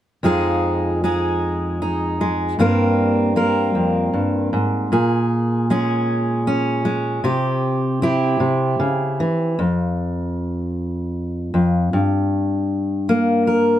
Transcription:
0.23 F2 F3 G#3 D#4 G#4
1.04 G#3 D#4 G#4
1.82 D#4
2.21 G#3
2.59 G2 G3 A#3 C4 A#4
3.36 A#3 C4 A#4
3.75 F2
4.13 G2
4.53 G#2
4.92 A#2 G#4
5.70 G#3 C#4 G#4
6.47 C#4
6.85 G#3
7.24 C3 G4
8.02 C4 E4 G4
8.40 C3
8.80 C#3
9.20 E3
9.59 F2
11.54 F2
11.93 G2
13.09 A#3
13.47 A#4

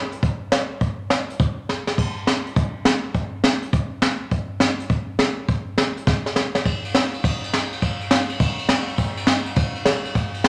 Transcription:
0.12 closed hi-hat
0.23 kick, closed hi-hat
0.52 snare, closed hi-hat
0.81 kick, closed hi-hat
1.10 snare, closed hi-hat
1.30 closed hi-hat
1.40 kick, closed hi-hat
1.69 snare
1.87 snare
1.98 kick, closed hi-hat, crash
2.27 snare, closed hi-hat
2.47 closed hi-hat
2.56 kick, closed hi-hat
2.85 snare, closed hi-hat
3.14 kick, closed hi-hat
3.44 snare, closed hi-hat
3.62 closed hi-hat
3.73 kick, closed hi-hat
4.02 snare, closed hi-hat
4.31 kick, closed hi-hat
4.60 snare, closed hi-hat
4.80 closed hi-hat
4.89 kick, closed hi-hat
5.19 snare, closed hi-hat
5.49 kick, closed hi-hat
5.78 snare, closed hi-hat
5.97 closed hi-hat
6.07 kick, snare
6.26 snare
6.36 snare
6.55 snare
6.65 kick, ride
6.84 ride
6.94 snare, ride
7.14 ride
7.24 kick, ride
7.44 ride
7.53 snare, ride
7.72 ride
7.82 kick, ride
8.01 ride
8.11 snare, ride
8.29 ride
8.39 kick, ride
8.59 ride
8.69 snare, ride
8.88 ride
8.97 kick, ride
9.17 ride
9.27 snare, ride
9.46 ride
9.56 kick, ride
9.75 ride
9.85 snare, ride
10.05 ride
10.15 kick, ride
10.34 ride
10.44 snare, ride

